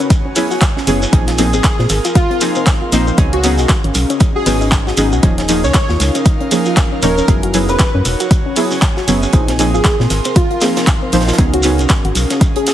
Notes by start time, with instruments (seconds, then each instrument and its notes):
Already playing: analog synth pad F#4 C#5 G#5
0.10 kick, closed hi-hat, shekere
0.25 synth arpeggio sound C#4
0.36 synth stab F#3 B3 C#4 E4 G#4, open hi-hat, shekere
0.51 synth arpeggio sound F#4, shekere
0.61 kick, snare, clap, closed hi-hat, shekere
0.77 synth arpeggio sound C#4, snare
0.87 fm bass F#1, synth stab F#3 B3 C#4 E4 G#4, closed hi-hat, open hi-hat, shekere
1.02 synth arpeggio sound C#4, shekere
1.13 fm bass A#1, synth stab F3 A#3 C4 D#4 G#4, analog synth pad A#4, kick, closed hi-hat, shekere
1.28 synth arpeggio sound F4, snare, closed hi-hat
1.38 synth stab F3 A#3 C4 D#4 G#4, closed hi-hat, open hi-hat, shekere
1.53 fm bass G#1, synth arpeggio sound C4, digital synth lead G#4, shekere
1.64 kick, snare, clap, closed hi-hat, shekere
1.79 fm bass A#2, synth arpeggio sound C4, analog synth pad F5, snare
1.89 fm bass G#1, snare, closed hi-hat, open hi-hat, shekere
1.99 analog synth pad C6
2.05 synth arpeggio sound F4, closed hi-hat, shekere
2.15 digital synth lead F4, kick, closed hi-hat, shekere
2.30 synth arpeggio sound C4, closed hi-hat
2.41 synth stab F3 A#3 C4 D#4 G#4, closed hi-hat, open hi-hat, shekere
2.55 synth arpeggio sound C4, shekere
2.66 kick, snare, clap, closed hi-hat, shekere
2.82 synth arpeggio sound F4
2.92 fm bass A#1, synth stab F3 A#3 C4 D#4 C5, snare, closed hi-hat, open hi-hat, shekere
3.07 synth arpeggio sound C4, shekere
3.18 fm bass C#2, synth stab F#3 B3 C#4 D#4 G#4, analog synth pad C#4, kick, closed hi-hat, shekere
3.33 synth arpeggio sound C#4, digital synth lead F#4, closed hi-hat
3.43 synth stab F#3 B3 C#4 D#4 G#4, digital synth lead F#4, closed hi-hat, open hi-hat, shekere
3.58 fm bass B1, synth arpeggio sound F#4, closed hi-hat, shekere
3.63 analog synth pad G#4
3.69 kick, snare, clap, closed hi-hat, shekere
3.84 fm bass G#1, synth arpeggio sound C#4, closed hi-hat
3.93 fm bass B1, analog synth pad D#5, closed hi-hat, open hi-hat, shekere
4.10 synth arpeggio sound C#4, closed hi-hat, shekere
4.20 kick, closed hi-hat, shekere
4.36 synth arpeggio sound F#4, digital synth lead G#4
4.46 fm bass G#1, synth stab F#3 B3 C#4 D#4 G#4, digital synth lead G#4, synth arpeggio sound B4, open hi-hat, shekere
4.61 synth arpeggio sound D#4, shekere
4.72 kick, snare, clap, closed hi-hat, shekere
4.87 synth arpeggio sound F#4, snare
4.97 fm bass G#1, synth stab F#3 B3 C#4 D#4 G#4, closed hi-hat, open hi-hat, shekere
5.12 fm bass B1, synth arpeggio sound F#4, shekere
5.23 fm bass D#1, synth stab F3 A#3 C#4 D#4 G#4, analog synth pad D#4, kick, closed hi-hat, shekere
5.38 synth arpeggio sound C#4, analog synth pad A#4, snare, closed hi-hat
5.48 synth stab F3 A#3 C#4 D#4 G#4, analog synth pad F5, closed hi-hat, open hi-hat, shekere
5.64 fm bass C#2, synth arpeggio sound C#4, digital synth lead C#5, shekere
5.74 kick, snare, clap, closed hi-hat, shekere
5.89 fm bass D#2, synth arpeggio sound F4, snare
6.00 fm bass C#2, snare, closed hi-hat, open hi-hat, shekere
6.15 synth arpeggio sound C#4, closed hi-hat, shekere
6.25 kick, closed hi-hat, shekere
6.41 synth arpeggio sound C#4, closed hi-hat
6.51 synth stab F3 A#3 C#4 D#4 G#4, closed hi-hat, open hi-hat, shekere
6.65 synth arpeggio sound F4, shekere
6.77 kick, snare, clap, closed hi-hat, shekere
6.92 synth arpeggio sound C#4
7.02 fm bass D#1, synth stab F3 A#3 C#4 D#4 C#5, digital synth lead A#4, snare, closed hi-hat, open hi-hat, shekere
7.18 synth arpeggio sound C#4, shekere
7.28 fm bass F#1, synth stab F#3 B3 C#4 E4 G#4, analog synth pad F#4, kick, closed hi-hat, shekere
7.43 synth arpeggio sound F#4, closed hi-hat
7.54 synth stab F#3 B3 C#4 E4 G#4, closed hi-hat, open hi-hat, shekere
7.66 fm bass E1, synth arpeggio sound C#4, digital synth lead B4, analog synth pad C#5, closed hi-hat, shekere
7.79 digital synth lead B4, kick, snare, clap, closed hi-hat, shekere
7.95 fm bass F#2, synth arpeggio sound C#4
8.05 fm bass E1, closed hi-hat, open hi-hat, shekere
8.20 synth arpeggio sound F#4, analog synth pad G#5, closed hi-hat, shekere
8.31 kick, closed hi-hat, shekere
8.46 synth arpeggio sound C#4
8.56 synth stab F#3 B3 C#4 E4 G#4, open hi-hat, shekere
8.71 synth arpeggio sound C#4, shekere
8.82 kick, snare, clap, closed hi-hat, shekere
8.97 synth arpeggio sound F#4, snare
9.08 fm bass F#1, synth stab F#3 B3 C#4 E4 G#4, closed hi-hat, open hi-hat, shekere
9.23 synth arpeggio sound C#4, shekere
9.33 fm bass A#1, synth stab F3 A#3 C4 D#4 G#4, analog synth pad A#4, kick, closed hi-hat, shekere
9.48 synth arpeggio sound C4, snare, closed hi-hat
9.59 synth stab F3 A#3 C4 D#4 G#4, analog synth pad C6, closed hi-hat, open hi-hat, shekere
9.74 fm bass G#1, synth arpeggio sound F4, digital synth lead G#4, shekere
9.85 kick, snare, clap, closed hi-hat, shekere
10.00 fm bass A#2, synth arpeggio sound C4, snare
10.10 fm bass G#1, analog synth pad F5, snare, closed hi-hat, open hi-hat, shekere
10.25 synth arpeggio sound C4, closed hi-hat, shekere
10.36 digital synth lead F4, kick, closed hi-hat, shekere
10.51 synth arpeggio sound F4, closed hi-hat
10.61 synth stab F3 A#3 C4 D#4 G#4, snare, closed hi-hat, open hi-hat, shekere
10.77 synth arpeggio sound C4, snare, closed hi-hat, shekere
10.87 kick, snare, clap, closed hi-hat, shekere
11.02 synth arpeggio sound C4
11.12 fm bass A#1, synth stab F3 A#3 C4 D#4 C5, snare, closed hi-hat, open hi-hat, shekere
11.21 snare, closed hi-hat
11.27 synth arpeggio sound F4, snare, closed hi-hat, shekere
11.33 snare, closed hi-hat
11.38 fm bass C#2, synth stab F#3 B3 C#4 D#4 G#4, analog synth pad C#4, kick, closed hi-hat, shekere
11.54 synth arpeggio sound C#4, digital synth lead F#4, analog synth pad G#4, closed hi-hat
11.63 synth stab F#3 B3 C#4 D#4 G#4, digital synth lead F#4, closed hi-hat, open hi-hat, shekere
11.78 fm bass B1, synth arpeggio sound C#4, closed hi-hat, shekere
11.89 kick, snare, clap, closed hi-hat, shekere
12.05 fm bass G#1, synth arpeggio sound F#4, closed hi-hat
12.15 fm bass B1, closed hi-hat, open hi-hat, shekere
12.29 synth arpeggio sound C#4, analog synth pad D#5, snare, closed hi-hat, shekere
12.41 kick, closed hi-hat, shekere
12.56 synth arpeggio sound C#4, digital synth lead G#4, closed hi-hat
12.66 digital synth lead G#4, snare, closed hi-hat, open hi-hat, shekere